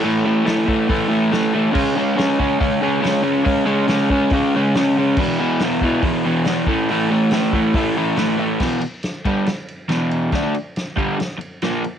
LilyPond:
<<
  \new Staff \with { instrumentName = "Overdriven electric guitar" } { \clef bass \time 4/4 \key e \major \tempo 4 = 140 <a, e a>8 <a, e a>8 <a, e a>8 <a, e a>8 <a, e a>8 <a, e a>8 <a, e a>8 <a, e a>8 | <cis gis cis'>8 <cis gis cis'>8 <cis gis cis'>8 <cis gis cis'>8 <cis gis cis'>8 <cis gis cis'>8 <cis gis cis'>8 <cis gis cis'>8 | <cis gis cis'>8 <cis gis cis'>8 <cis gis cis'>8 <cis gis cis'>8 <cis gis cis'>8 <cis gis cis'>8 <cis gis cis'>8 <cis gis cis'>8 | <e, b, e>8 <e, b, e>8 <e, b, e>8 <e, b, e>8 <e, b, e>8 <e, b, e>8 <e, b, e>8 <a, e a>8 |
<a, e a>8 <a, e a>8 <a, e a>8 <a, e a>8 <a, e a>8 <a, e a>8 <a, e a>8 <a, e a>8 | <e, b, e>8 r4 <g, d g>8 r4 <e, b, e>4 | <d a d'>8 r4 <g, d g>8 r4 <ais, f ais>8 r8 | }
  \new DrumStaff \with { instrumentName = "Drums" } \drummode { \time 4/4 r4 <hho sn>8 bd8 <hho bd>4 <hho sn>4 | <cymc bd>4 <hho sn>8 bd8 <hho bd>4 <hho sn>4 | <hho bd>4 <hho sn>8 bd8 <hho bd>4 <hho sn>4 | <cymc bd>4 <hho sn>8 bd8 <hho bd>4 <hho sn>8 bd8 |
hho4 <hho sn>8 bd8 <hho bd>4 <hho sn>4 | <cymc bd sn>8 cymr8 <cymr sn>8 <bd cymr>8 <cymr sn>8 cymr8 <cymr sn>8 cymr8 | <bd cymr sn>8 cymr8 <cymr sn>8 <bd cymr>8 <cymr sn>8 cymr8 <cymr sn>8 cymr8 | }
>>